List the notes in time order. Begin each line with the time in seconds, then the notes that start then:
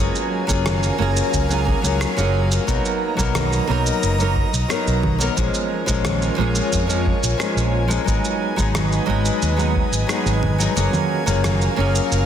Already playing: F#3 A#3
0.00 C#4 F4 G#4 A#4 F5 G#5
0.15 shaker
0.47 F#1 F#3 A#3 C#4 F4, kick, shaker
0.51 G#4
0.66 cross-stick, low conga, shaker
0.83 shaker
0.98 F#1 F#3 A#3 C#4 F4 G#4
1.17 shaker
1.34 C#2, kick, shaker
1.49 F#3 A#3 C#4 F4 G#4, shaker
1.65 F#3 A#3 C#4 F4 G#4, kick
1.82 C#2 F#3 A#3 C#4 F4 G#4, shaker
2.01 cross-stick, shaker
2.17 F#1 F#3 A#3 C#4 F4 G#4, shaker
2.52 shaker
2.67 B1 F#3 A#3 B3 D#4 A#4 D#5 A#5, kick, shaker
2.85 shaker
3.17 B1 F#3 A#3 B3 D#4, kick, shaker
3.21 A#4
3.35 cross-stick, low conga, shaker
3.53 shaker
3.67 B1 F#3 A#3 B3 D#4 A#4
3.86 shaker
4.03 F#1, shaker
4.18 F#3 A#3 B3 D#4 A#4, shaker
4.37 kick
4.54 B1, shaker
4.68 F#3 A#3 B3 D#4 A#4, cross-stick, shaker
4.87 B1, shaker
5.03 kick, low conga
5.18 F#3 A#3 B3 D#4 A#4, shaker
5.36 A#1 F3 G#3 A#3 C#4 F4 G#4 A#4 C#5 G#5, kick, shaker
5.54 shaker
5.86 A#1 F3 G#3 A#3 C#4 G#4, kick, shaker
6.05 cross-stick, low conga, shaker
6.22 shaker
6.36 A#1 F3 G#3 A#3 C#4
6.41 G#4
6.55 shaker
6.73 F2, kick, shaker
6.87 F3 G#3 A#3 C#4 G#4, shaker
7.07 kick
7.23 A#1, shaker
7.38 F3 G#3 A#3 C#4 G#4, cross-stick, shaker
7.56 A#1, shaker
7.88 F3 G#3 A#3 C#4, shaker
7.92 G#4
8.04 G#1 F#3 G#3 B3 D#4, kick, shaker
8.08 G#4 B4 D#5
8.25 shaker
8.56 G#1 F#3 G#3 B3 D#4 G#4, kick, shaker
8.75 cross-stick, low conga, shaker
8.92 shaker
9.06 G#1 F#3 G#3 B3 D#4 G#4
9.25 shaker
9.42 D#2, shaker
9.57 F#3 G#3 B3 D#4 G#4, shaker
9.76 kick
9.92 G#1, shaker
10.07 F#3 G#3 B3 D#4, cross-stick, shaker
10.11 G#4
10.26 G#1, shaker
10.43 kick, low conga
10.58 F#3 G#3 B3 D#4, shaker
10.63 G#4
10.76 F#1 F#3 A#3 C#4 F4 G#4 A#4 F5, shaker
10.93 low conga, shaker
11.26 F#1 F#3 A#3 C#4 F4 G#4, shaker
11.44 cross-stick, low conga, shaker
11.62 shaker
11.76 F#1 F#3 A#3 C#4 F4 G#4
11.95 shaker
12.12 F#1, shaker